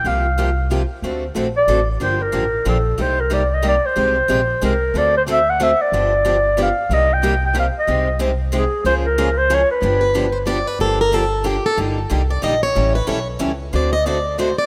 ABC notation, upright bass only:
X:1
M:3/4
L:1/8
Q:"Swing" 1/4=184
K:Gm
V:1 name="Upright bass" clef=bass
C,,6 | D,,2 B,,,2 A,,,2 | G,,,2 A,,,2 B,,,2 | [K:Cm] C,,6 |
C,,2 B,,,2 C,,2 | D,,6 | G,,,6 | C,,6 |
C,,6 | _D,,6 | G,,,6 | [K:Gm] G,,,6 |
G,,,2 C,,2 B,,,2 | A,,,2 =B,,,2 ^C,,2 | D,,6 |]